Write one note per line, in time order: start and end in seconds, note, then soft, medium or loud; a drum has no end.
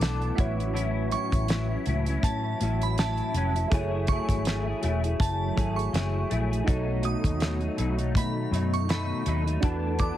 0.00 0.30 B1 medium
0.00 0.37 E3 medium
0.00 0.34 A3 medium
0.00 0.34 B3 medium
0.00 0.38 B3 medium
0.00 0.32 D4 medium
0.00 0.35 D4 medium
0.00 0.38 D4 medium
0.00 0.35 E4 medium
0.00 0.33 F#4 medium
0.00 0.34 A4 medium
0.00 0.38 A4 loud
0.00 0.35 B4 medium
0.00 0.19 D6 medium
0.00 snare loud
0.00 closed hi-hat loud
0.22 closed hi-hat soft
0.35 1.14 A1 loud
0.35 0.57 A2 medium
0.35 6.63 E3 medium
0.35 0.58 F#3 medium
0.35 10.17 A3 medium
0.35 3.67 C#4 medium
0.35 0.56 C#4 medium
0.35 3.29 E4 medium
0.35 3.30 F#4 medium
0.35 9.59 F#4 medium
0.35 3.31 B4 medium
0.35 kick loud
0.35 closed hi-hat medium
0.39 0.55 E4 medium
0.39 3.31 C#5 medium
0.56 0.72 F#3 soft
0.56 0.74 C#4 medium
0.56 0.74 E4 medium
0.60 closed hi-hat soft
0.73 1.10 A2 medium
0.73 1.11 F#3 medium
0.73 1.12 C#4 medium
0.73 1.12 E4 loud
0.73 closed hi-hat medium
1.11 1.47 A2 medium
1.11 1.48 F#3 medium
1.11 1.49 C#4 medium
1.11 1.49 E4 medium
1.11 1.31 C#6 loud
1.11 closed hi-hat medium
1.32 1.75 A1 medium
1.32 kick medium
1.32 closed hi-hat medium
1.48 1.69 A2 medium
1.48 1.70 F#3 medium
1.48 1.69 C#4 loud
1.48 1.68 E4 loud
1.48 snare loud
1.48 closed hi-hat medium
1.69 1.86 F#3 medium
1.69 1.87 C#4 medium
1.69 1.86 E4 medium
1.86 2.16 C#2 medium
1.86 2.06 A2 medium
1.86 2.07 F#3 medium
1.86 2.08 C#4 medium
1.86 2.07 E4 medium
1.86 closed hi-hat medium
2.06 2.60 F#3 soft
2.06 2.61 C#4 medium
2.06 2.61 E4 medium
2.06 closed hi-hat medium
2.23 2.53 A2 loud
2.23 2.43 A5 medium
2.23 kick loud
2.23 closed hi-hat loud
2.60 3.20 A1 medium
2.60 2.97 A2 medium
2.60 2.98 F#3 medium
2.60 2.98 C#4 medium
2.60 2.99 E4 medium
2.60 closed hi-hat medium
2.82 2.98 B5 medium
2.82 closed hi-hat medium
2.98 3.34 A2 medium
2.98 3.35 F#3 medium
2.98 3.35 C#4 medium
2.98 3.36 E4 loud
2.98 3.52 A5 medium
2.98 snare loud
2.98 closed hi-hat loud
3.17 closed hi-hat soft
3.34 3.64 F1 medium
3.34 3.55 A2 medium
3.34 3.56 F#3 medium
3.34 3.56 C#4 medium
3.34 3.54 E4 medium
3.34 closed hi-hat medium
3.55 3.71 F#3 soft
3.55 3.72 C#4 medium
3.55 3.71 E4 medium
3.55 closed hi-hat medium
3.68 5.51 E4 medium
3.68 5.52 G#4 medium
3.68 5.53 A4 medium
3.68 kick loud
3.68 closed hi-hat medium
3.72 4.18 F#1 loud
3.72 4.09 F#3 medium
3.72 6.65 F#3 medium
3.72 4.09 A3 medium
3.72 4.10 E4 loud
3.72 4.10 G#4 loud
3.72 5.54 C#5 loud
4.07 4.46 F#3 medium
4.07 4.46 A3 medium
4.07 4.28 C#6 medium
4.07 kick loud
4.07 closed hi-hat medium
4.12 4.47 E4 medium
4.12 4.47 G#4 medium
4.29 4.72 G#1 medium
4.29 kick medium
4.29 closed hi-hat medium
4.45 4.66 F#3 medium
4.45 4.67 A3 medium
4.45 4.67 E4 loud
4.45 4.66 G#4 loud
4.45 snare loud
4.45 closed hi-hat medium
4.67 4.82 A3 soft
4.67 4.83 E4 medium
4.67 4.83 G#4 medium
4.82 5.12 E1 medium
4.82 5.03 F#3 medium
4.82 5.03 A3 medium
4.82 5.03 E4 medium
4.82 5.02 G#4 medium
4.82 closed hi-hat medium
5.03 5.56 A3 soft
5.03 5.57 E4 soft
5.03 5.56 G#4 medium
5.03 closed hi-hat soft
5.20 5.49 F#1 loud
5.20 5.39 A5 medium
5.20 kick loud
5.20 closed hi-hat loud
5.54 5.87 G#1 medium
5.54 5.92 F#3 medium
5.54 5.92 A3 medium
5.54 6.66 E4 medium
5.54 6.67 G#4 medium
5.54 6.66 A4 soft
5.54 6.68 C#5 medium
5.54 kick medium
5.58 5.93 E4 medium
5.58 5.94 G#4 medium
5.58 closed hi-hat medium
5.76 6.12 C#6 medium
5.76 closed hi-hat medium
5.93 6.23 F#1 medium
5.93 6.28 F#3 medium
5.93 6.29 A3 medium
5.93 6.31 E4 medium
5.93 6.31 G#4 medium
5.93 snare loud
5.93 closed hi-hat medium
6.30 6.60 A#1 medium
6.30 6.50 F#3 medium
6.30 6.51 A3 medium
6.30 6.50 E4 medium
6.30 6.49 G#4 medium
6.30 closed hi-hat medium
6.51 6.66 A3 soft
6.51 6.68 E4 soft
6.51 6.67 G#4 soft
6.51 closed hi-hat medium
6.64 7.14 B1 loud
6.64 7.01 B2 medium
6.64 7.02 F#3 medium
6.64 7.03 A3 medium
6.64 9.58 D#4 medium
6.64 7.04 D#4 loud
6.64 9.59 F#4 medium
6.64 9.59 A4 medium
6.64 kick loud
6.68 9.61 D#3 medium
6.68 9.61 B3 medium
6.68 9.60 C#5 medium
6.68 closed hi-hat medium
7.02 7.40 B2 medium
7.02 7.40 F#3 medium
7.02 7.41 A3 medium
7.02 7.42 D#4 medium
7.02 7.24 D#6 medium
7.02 closed hi-hat medium
7.24 7.67 D#2 medium
7.24 kick medium
7.24 closed hi-hat medium
7.40 7.62 B2 medium
7.40 7.62 F#3 medium
7.40 7.60 A3 loud
7.40 7.58 D#4 medium
7.40 snare loud
7.40 closed hi-hat medium
7.60 7.77 F#3 medium
7.60 7.77 A3 medium
7.60 7.77 D#4 medium
7.60 closed hi-hat soft
7.76 8.17 B1 loud
7.76 7.98 B2 medium
7.76 7.99 F#3 medium
7.76 7.98 A3 medium
7.76 7.96 D#4 medium
7.76 closed hi-hat medium
7.97 8.52 F#3 medium
7.97 8.52 A3 medium
7.97 8.52 D#4 medium
7.97 closed hi-hat soft
8.15 8.45 B2 loud
8.15 8.36 B5 medium
8.15 kick loud
8.15 closed hi-hat loud
8.51 9.11 F#2 loud
8.51 8.87 B2 medium
8.51 8.88 F#3 medium
8.51 8.88 A3 medium
8.51 8.89 D#4 medium
8.51 closed hi-hat medium
8.74 8.89 C#6 medium
8.74 closed hi-hat medium
8.88 9.24 B2 medium
8.88 9.24 F#3 medium
8.88 9.25 A3 medium
8.88 9.27 D#4 loud
8.88 9.44 B5 medium
8.88 snare loud
8.88 closed hi-hat medium
9.25 9.56 D#2 medium
9.25 9.46 B2 medium
9.25 9.46 F#3 medium
9.25 9.47 A3 medium
9.25 9.45 D#4 medium
9.25 closed hi-hat medium
9.46 9.62 F#3 soft
9.46 9.63 A3 medium
9.46 9.63 D#4 medium
9.46 closed hi-hat medium
9.60 10.09 E2 loud
9.60 9.98 E3 medium
9.60 9.99 B3 medium
9.60 10.17 B3 medium
9.60 10.17 D4 medium
9.60 10.00 D4 medium
9.60 10.17 D4 medium
9.60 10.17 E4 medium
9.60 10.17 F#4 medium
9.60 10.17 A4 medium
9.60 10.01 A4 loud
9.60 kick loud
9.60 closed hi-hat medium
9.65 10.17 B4 medium
9.99 10.17 E3 medium
9.99 10.17 B3 medium
9.99 10.17 D4 medium
9.99 10.17 A4 medium
9.99 10.17 D6 medium
9.99 kick medium
9.99 closed hi-hat medium